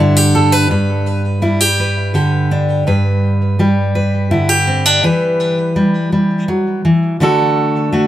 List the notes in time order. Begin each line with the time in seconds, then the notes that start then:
Already playing: G2 G3 D4 B4
0.00 D3 E4
0.17 G4
0.35 A4
0.52 B4
0.70 G2 B4
1.42 G3 E4
1.61 G4
1.80 B4
2.14 D3 G4
2.51 D4
2.87 G2 B4
3.59 G3 G4
3.95 B4
4.31 D3 E4
4.49 G4
4.67 C4
4.86 D4
5.04 E3 B4
5.76 G3
6.12 G3
6.48 F#3
6.85 E3
7.20 D3 A3 D4 F#4 A4
7.92 A3 F#4